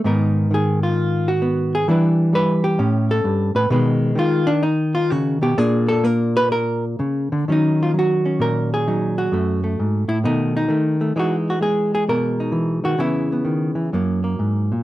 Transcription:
0.04 G#2 D#3 B3 D#4 A#4
0.51 D#3 G#4
0.83 F4
1.28 F#4
1.42 B3
1.75 G#4
1.88 E3 G3 D4 E4 B4
2.33 G3 B4
2.64 G4
2.79 A2 C#4
3.11 A4
3.24 G2
3.55 A2 B4
3.70 B2 D#3 G#3 B4
4.15 D#3 F4
4.47 D4
4.63 D#4
4.95 F4
5.10 C#3 F#4
5.42 B2 G4
5.58 A#2 A#3 D4 G#4
5.88 A4
6.04 A#3 A#4
6.37 B4
6.52 A#4
7.00 C#3
7.32 D3
7.48 D#3 F#3 C#4 D#4
7.83 F4
7.94 F#3
7.99 F#4
8.26 C#4
8.39 A#2 A#4
8.74 G#4
8.88 F#3 D#4
9.18 F#4
9.32 F#2 A3
9.64 A3
9.79 G#2
10.08 A2 E4
10.24 B2 D#3 A3 D#4
10.57 D#4
10.68 D#3 A3
11.01 A3
11.16 E3 G#3 D#4 F#4
11.50 F#4
11.61 G#3 G#4
11.95 G#4
12.09 B2 A#4
12.40 D#4
12.52 E3
12.84 D#3 F#4
12.99 C#3 E3 B3 E4
13.32 B3
13.45 D#3
13.75 E3
13.93 F#2 F#3 A#3
14.24 A#3
14.39 G#2
14.72 A#2

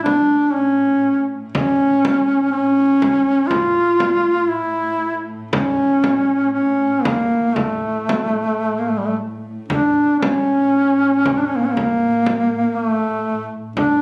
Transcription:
Already playing: A2
0.04 D4, frame drum
0.53 C#4
1.53 C#4, frame drum
2.05 frame drum
2.52 C#4
3.02 frame drum
3.47 F4, frame drum
4.00 frame drum
4.49 E4
5.51 C#4, frame drum
6.04 frame drum
6.53 C#4
7.02 A#3, frame drum
7.54 A3, frame drum
8.09 frame drum
8.79 A#3
8.88 A3
8.97 G3
9.07 A3
9.68 A2 D4, frame drum
10.19 C#4, frame drum
11.26 frame drum
11.39 D4
11.47 C#4
11.56 A#3
11.65 C#4
11.73 A#3
11.77 frame drum
12.26 frame drum
12.75 A3
13.76 D4, frame drum

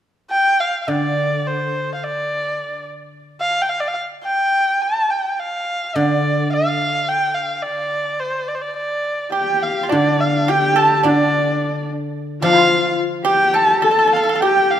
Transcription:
0.31 G5
0.60 F5
0.81 F5
0.88 D3 D5
1.47 C5
1.95 F5
2.03 D5
3.41 F5
3.62 G5
3.69 F5
3.80 D5
3.88 F5
4.24 G5
4.82 A5
5.11 G5
5.32 G5
5.40 F5
5.96 D3 D5
6.53 F5
7.08 G5
7.35 F5
7.62 D5
8.20 C5
8.48 D5
8.55 C5
8.61 D5
8.77 D5
9.32 G4 G5
9.63 F5
9.83 F4
9.89 D3 D4 D5
10.20 F5
10.48 G4 G5
10.76 A4 A5
11.03 D3 D4 D5
12.42 F3 F4 F5
13.25 G4 G5
13.54 A4 A5
13.82 A4 A5
13.91 A4
13.99 A4
14.07 A4
14.13 A4 F5
14.23 A4
14.29 A4
14.36 A4
14.41 G4 G5
14.71 F5

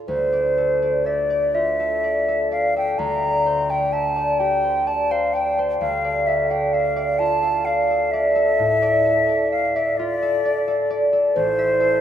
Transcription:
Already playing: A2 E4 F4 A4
0.08 D2 C5
0.33 D5
0.58 A4
0.82 D5
1.05 D5 E5
1.30 D5
1.55 F4 E5
1.80 A4
2.04 D5
2.28 A4
2.52 D5 F5
2.76 A4 G5
2.99 D2 A#5
3.22 D5
3.46 C5
3.69 D5 G5
3.92 E5 A5
4.16 D5
4.39 G4 G5
4.64 C5
4.87 D5 A5
5.11 C5 F5
5.34 D5 G5
5.58 C5
5.80 D2 F5
6.04 D5
6.27 A4 E5
6.51 D5 G5
6.73 E5 F5
6.96 D5
7.19 F4 A5
7.43 A4
7.65 D5 F5
7.90 A4
8.11 D5 E5
8.35 A4
8.59 A2
8.82 D5
9.05 A4
9.29 D5
9.52 E5 F5
9.76 D5 E5
9.97 F4 D5
10.23 A4
10.45 D5
10.68 A4
10.90 D5
11.13 A4
11.34 A1 C5
11.59 E5
11.80 A4

